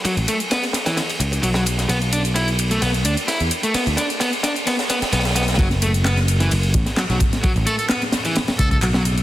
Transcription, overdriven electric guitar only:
\new Staff \with { instrumentName = "Overdriven electric guitar" } { \time 4/4 \key b \dorian \tempo 4 = 130 fis16 r16 a16 r16 b16 r8 e16 r4 fis16 fis16 r8 | b16 r16 d'16 r16 e'16 r8 a16 b16 r16 d'16 r16 e'16 r8 a16 | b16 r16 d'16 r16 b16 r16 d'16 r16 b16 r16 b16 r16 b16 r16 b16 r16 | fis16 r16 a16 r16 b16 r8 e16 r4 fis16 fis16 r8 |
fis16 r16 a16 r16 b16 r8 e16 r4 fis16 fis16 r8 | }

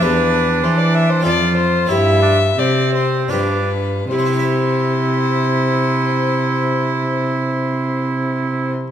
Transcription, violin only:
\new Staff \with { instrumentName = "Violin" } { \time 3/4 \key c \major \tempo 4 = 75 b'4 c''16 d''16 e''16 c''16 d''8 c''8 | e''4 d''8 c''8 b'4 | c''2.~ | c''2. | }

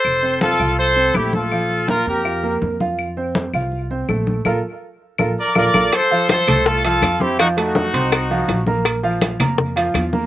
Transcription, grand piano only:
\new Staff \with { instrumentName = "Grand piano" } { \time 4/4 \key f \major \tempo 4 = 164 r8 <c' c''>4 <f' f''>4 <c' c''>8 <a a'>4 | <f f'>4 <bes bes'>4 <f' f''>8 <bes bes'>4 <f' f''>8~ | <f' f''>8 <c' c''>4 <f' f''>4 <c' c''>8 <a a'>4 | <f' a' bes'>8 r4. <f' a' bes'>8 r8 <f' a' bes'>8 <f' a' bes'>8 |
r8 <f f' f''>4 <a a' a''>4 <f f' f''>4 <c' c'' c'''>8 | <f f' f''>8 <a a' a''>4 <c' c'' c'''>4 <f ges' f''>4 <bes bes' bes''>8~ | <bes bes' bes''>8 <f f' f''>4 <bes bes' bes''>4 <f f' f''>4 <bes bes' bes''>8 | }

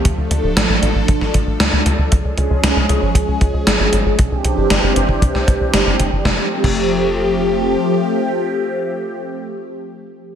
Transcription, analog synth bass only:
\new Staff \with { instrumentName = "Analog synth bass" } { \clef bass \time 4/4 \key f \major \tempo 4 = 116 d,16 d,16 d,16 d,,16 a,,16 a,,16 a,,16 a,,16 a,,16 a,,16 a,,16 a,,16 d,16 d,16 d,16 d,16 | des,16 des,16 des,16 des,16 des,16 des,16 des,16 aes,,16 des,16 des,16 des,16 des,16 aes,,16 aes,,16 aes,,16 aes,,16 | c,16 c,16 c,16 g,,16 g,,16 g,,16 g,,16 g,,16 c,16 c,16 c,16 c,16 g,,16 g,,16 g,,16 g,,16 | f,,16 r8 f,,2~ f,,16 r4 |
r1 | }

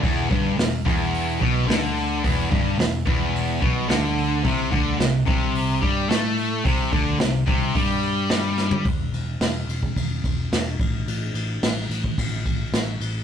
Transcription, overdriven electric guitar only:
\new Staff \with { instrumentName = "Overdriven electric guitar" } { \clef bass \time 4/4 \key e \minor \tempo 4 = 109 e,8 g,8 e,8 e,4 b,8 d4 | e,8 g,8 e,8 e,4 b,8 d4 | c8 d8 c8 c4 g8 a4 | c8 d8 c8 c8 g2 |
r1 | r1 | }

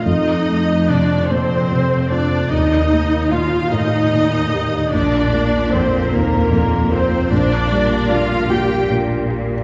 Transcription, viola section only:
\new Staff \with { instrumentName = "Viola section" } { \time 6/8 \key f \mixolydian \tempo 4. = 50 ees'4 d'8 c'4 d'8 | ees'4 f'8 ees'4. | d'4 c'8 bes4 c'8 | d'4 f'8 g'8 r4 | }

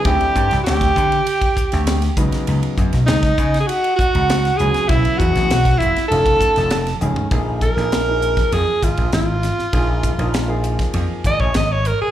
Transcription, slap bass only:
\new Staff \with { instrumentName = "Slap bass" } { \clef bass \time 4/4 \key cis \minor \tempo 4 = 99 d,16 r16 g,16 c,16 d,8 d8 r8. d,8. cis,16 r16 | cis,16 r16 fis,16 b,,16 cis,8 cis8 r8. cis,8. cis,16 r16 | b,,16 r16 e,16 a,,16 b,,8 fis,,16 r16 f,,8 r16 f,,8. f,,16 r16 | \key c \phrygian bes,,8. bes,,4~ bes,,16 f,16 r16 aes,,16 bes,,16 aes,,8. r16 |
bes,,8. bes,,4~ bes,,16 f,16 r16 aes,,16 bes,,16 aes,,8. r16 | }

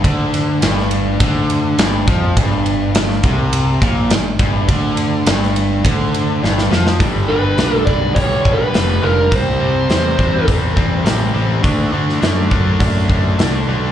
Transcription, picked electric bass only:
\new Staff \with { instrumentName = "Picked electric bass" } { \clef bass \time 4/4 \key g \mixolydian \tempo 4 = 103 d,4 g,,4 d,4 g,,8 f,8 | g,,4. c,4 bes,,8 g,,8 g,,8 | d,4 g,,4 d,4 g,,8 f,8 | g,,8 g,,8 b,,8 b,,8 b,,8 b,,8 f,,8 f,,8 |
c,8 c,8 e,8 e,8 e,8 e,8 a,,8 a,,8 | d,8 d,8 fis,8 fis,8 fis,8 fis,8 c,8 b,,8 | }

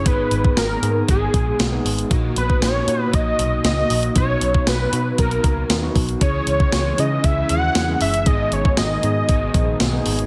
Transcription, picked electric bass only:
\new Staff \with { instrumentName = "Picked electric bass" } { \clef bass \time 4/4 \key gis \minor \tempo 4 = 117 gis,,8 gis,,8 gis,,8 gis,8 gis,,8 ais,,8 b,,8 gis,,8 | ais,,8 ais,,8 ais,,8 ais,8 ais,,8 b,,8 cis,8 ais,,8 | b,,8 b,,8 b,,8 b,8 b,,8 cis,8 dis,8 b,,8 | cis,8 cis,8 cis,8 cis8 cis,8 dis,8 e,8 fis,,8 |
gis,,8 gis,,8 gis,,8 gis,8 gis,,8 ais,,8 b,,8 gis,,8 | }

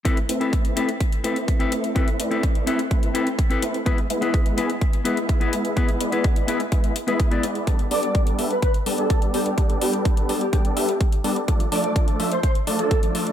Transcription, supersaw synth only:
\new Staff \with { instrumentName = "Supersaw synth" } { \time 4/4 \key a \minor \tempo 4 = 126 <a c' e' b' e''>16 r16 <a c' e' b' e''>4 <a c' e' b' g''>16 r8. <a c' e' b' e''>16 <a c' e' b' e''>8. <a c' e' b' e''>8 | <a c' e' b' e''>8 <a c' e' b' d''>4 <a c' e' b' e''>16 r16 <a c' e' b' e''>8 <a c' e' b' g''>16 r8. <a c' e' b' e''>16 r16 | <gis b e' b' e''>16 r16 <gis b e' b' e''>4 <gis b e' b' gis''>16 r8. <gis b e' b' e''>16 <gis b e' b' e''>8. <gis b e' b' e''>8 | <gis b e' b' e''>8 <gis b e' b' d''>4 <gis b e' b' e''>16 r16 <gis b e' b' e''>8 r16 <gis b e' b' e''>8 <gis b e' b' e''>16 <gis b e' b' d''>8 |
<g b d' a' d''>16 r16 <g b d' a' d''>4 <g b d' a' e''>16 r8. <g b d' a' d''>16 <g b d' a' d''>8. <g b d' a' d''>8 | <g b d' a' d''>8 <g b d' a' b'>4 <g b d' a' d''>16 r16 <g b d' a' d''>8 <g b d' a' e''>16 r8. <g b d' a' d''>16 r16 | <f a d' a' d''>16 r16 <f a d' a' d''>4 <f a d' a' e''>16 r8. <f a d' a' d''>16 <f a d' a' d''>8. <f a d' a' d''>8 | }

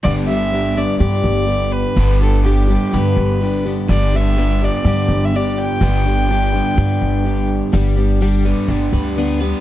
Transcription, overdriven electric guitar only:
\new Staff \with { instrumentName = "Overdriven electric guitar" } { \time 4/4 \key g \major \tempo 4 = 125 <g, d g b d' g'>1 | <g, d g b d' g'>1 | <g, d g b d' g'>1 | <g, d g b d' g'>1 |
g4 g8 b8 d'8 b'8 b8 b'8 | }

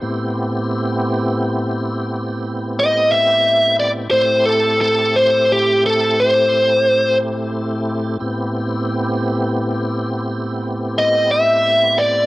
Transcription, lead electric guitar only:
\new Staff \with { instrumentName = "Lead electric guitar" } { \time 12/8 \key a \minor \tempo 4. = 59 r1 dis''8 e''4 d''8 | c''8 a'8 a'8 c''8 g'8 a'8 c''4. r4. | r1 dis''8 e''4 d''8 | }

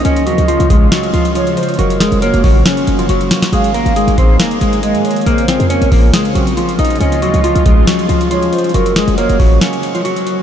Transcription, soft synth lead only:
\new Staff \with { instrumentName = "Soft synth lead" } { \time 4/4 \key des \major \tempo 4 = 138 ees''2 r4 des''8 c''8 | bes'4 des''4 r2 | f''2 r4 ees''8 des''8 | c''4 bes'4 r2 |
ees''2 r4 des''8 c''8 | bes'4 des''4 r2 | }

